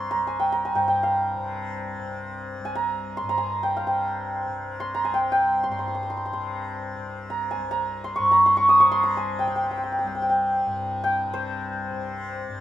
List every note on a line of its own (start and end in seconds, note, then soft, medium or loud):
0.00 0.13 C2 medium
0.00 0.73 G2 medium
0.00 1.35 C3 medium
0.00 0.10 A#5 medium
0.00 1.66 C6 medium
0.11 2.59 C2 medium
0.11 0.52 A#5 medium
0.27 0.46 G#5 medium
0.40 0.71 G5 medium
0.52 2.38 A#5 medium
0.65 0.81 G#5 medium
0.74 3.22 G2 medium
0.74 0.87 G5 medium
0.88 2.71 G5 medium
1.03 3.25 F5 medium
1.35 1.97 C3 medium
1.97 3.84 C3 soft
2.60 5.07 C2 medium
2.65 3.37 G#5 medium
2.75 3.29 A#5 medium
3.17 4.80 C6 medium
3.22 5.68 G2 medium
3.29 4.94 A#5 medium
3.38 3.69 G#5 medium
3.63 3.87 G5 medium
3.77 5.99 F5 medium
3.84 4.46 C3 medium
3.84 5.11 G5 medium
4.46 6.32 C3 medium
4.80 5.63 C6 medium
4.95 6.80 A#5 medium
5.05 7.56 C2 medium
5.05 5.20 G#5 medium
5.14 5.31 G5 medium
5.32 7.39 G5 medium
5.63 5.71 C6 medium
5.69 8.18 G2 medium
5.69 5.78 C6 medium
5.79 5.87 C6 medium
5.88 5.94 C6 soft
5.95 6.02 C6 medium
6.03 6.10 C6 soft
6.10 6.17 C6 medium
6.17 6.25 C6 soft
6.26 6.33 C6 medium
6.32 6.95 C3 medium
6.32 8.04 C6 medium
6.95 8.79 C3 medium
7.30 7.71 A#5 medium
7.51 9.17 G#5 medium
7.56 10.04 C2 medium
7.71 8.31 A#5 medium
8.04 8.22 C6 medium
8.16 10.65 G2 medium
8.16 8.52 C#6 medium
8.31 9.03 A#5 medium
8.46 8.63 C6 medium
8.57 8.80 C#6 medium
8.69 10.25 D#6 medium
8.79 9.43 C3 medium
8.79 8.98 C#6 medium
8.92 10.66 C6 medium
9.04 10.89 A#5 medium
9.17 9.45 G#5 medium
9.39 11.27 C3 medium
9.39 9.47 G5 medium
9.47 9.55 G5 medium
9.56 9.63 G5 medium
9.64 9.71 G5 soft
9.71 9.77 G5 soft
9.78 9.83 G5 soft
9.84 9.92 G5 soft
9.92 9.98 G5 soft
9.99 10.06 G5 soft
10.04 12.61 C2 medium
10.04 10.15 G5 soft
10.15 10.22 G5 medium
10.22 10.29 G5 soft
10.29 11.03 G5 medium
10.66 12.48 G2 medium
11.04 12.61 G5 medium
11.27 11.91 C3 medium
11.34 12.61 C5 medium
11.91 12.61 C3 medium
12.49 12.61 G2 medium